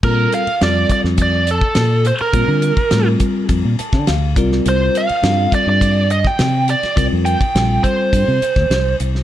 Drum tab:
CC |x---------------|----------------|----------------|----------------|
RD |--xxx-x-x-x-x-xx|x-xxx-x-x-xxx-x-|x-xxx-x-x-x-x-xx|x-xxx-x-x-xxx-x-|
HH |--p-p-p-p-p-p-p-|p-p-p-p-p-p-p-p-|p-p-p-p-p-p-p-p-|p-p-p-p-p-p-p-p-|
SD |----o--o----o---|----o------oo--o|----o------oo--o|----o------oo--o|
BD |o-----o-o--o----|o--o--o-o--o--o-|------o-o--o----|o--o--o-o--o----|